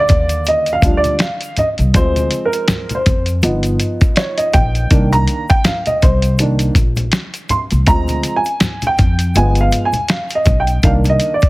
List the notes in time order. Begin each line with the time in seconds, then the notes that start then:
Already playing: D3 F3 G3
0.00 D5
0.09 D#2, kick, closed hi-hat, low conga, shaker
0.29 closed hi-hat, shaker
0.45 D#5, closed hi-hat, shaker
0.66 closed hi-hat, shaker
0.73 F5
0.82 D2 F3 G3 D4, kick, closed hi-hat, shaker
0.97 D5
1.04 closed hi-hat, high conga, shaker
1.19 F5, snare, closed hi-hat, shaker
1.41 closed hi-hat, shaker
1.57 D#5, closed hi-hat, high conga, low conga, shaker
1.78 C2, closed hi-hat, shaker
1.93 D2 F3 G#3 C4 C5, kick, closed hi-hat, shaker
2.16 closed hi-hat, high conga, shaker
2.31 closed hi-hat, shaker
2.45 A#4
2.53 closed hi-hat, shaker
2.68 snare, closed hi-hat, low conga, shaker
2.89 closed hi-hat, high conga, shaker
2.95 C5
3.06 F2, kick, closed hi-hat, low conga, shaker
3.26 closed hi-hat, shaker
3.43 G1 F3 B3 D#4, closed hi-hat, shaker
3.63 closed hi-hat, shaker
3.80 closed hi-hat, shaker
4.01 kick, closed hi-hat, high conga, shaker
4.16 C#5, snare, closed hi-hat, shaker
4.37 D#5, closed hi-hat, shaker
4.53 A#1 G5, kick, closed hi-hat, high conga, low conga, shaker
4.75 closed hi-hat, shaker
4.91 C2 D#3 A#3 D4, kick, closed hi-hat, shaker
5.13 A#5, closed hi-hat, high conga, shaker
5.27 closed hi-hat, shaker
5.49 G5, kick, closed hi-hat, shaker
5.64 F5, snare, closed hi-hat, low conga, shaker
5.86 D#5, closed hi-hat, high conga, shaker
6.02 C2 C5, kick, closed hi-hat, low conga, shaker
6.22 closed hi-hat, shaker
6.39 D#3 A#3 D4, closed hi-hat, shaker
6.59 closed hi-hat, shaker
6.75 A#1, kick, closed hi-hat, shaker
6.96 closed hi-hat, high conga, shaker
7.12 snare, closed hi-hat, shaker
7.34 closed hi-hat, shaker
7.49 C6, closed hi-hat, high conga, low conga, shaker
7.71 C2, closed hi-hat, shaker
7.87 D2 F3 G#3 C4 A#5, kick, closed hi-hat, shaker
8.08 closed hi-hat, high conga, shaker
8.23 closed hi-hat, shaker
8.36 G#5
8.45 closed hi-hat, shaker
8.60 snare, closed hi-hat, low conga, shaker
8.82 closed hi-hat, high conga, shaker
8.87 G5
8.98 F2, kick, closed hi-hat, low conga, shaker
9.19 closed hi-hat, shaker
9.35 G1 F3 G#3 B3 G#5, closed hi-hat, shaker
9.55 closed hi-hat, shaker
9.61 F5
9.72 closed hi-hat, shaker
9.85 G#5
9.93 closed hi-hat, high conga, shaker
10.08 F5, snare, closed hi-hat, shaker
10.30 closed hi-hat, shaker
10.35 D#5
10.45 B1, kick, closed hi-hat, high conga, low conga, shaker
10.60 G5
10.67 closed hi-hat, shaker
10.83 C2 D#3 A#3 D4 F5, kick, closed hi-hat, shaker
11.04 closed hi-hat, high conga, shaker
11.09 D#5
11.20 closed hi-hat, shaker
11.34 D5
11.40 kick, closed hi-hat, shaker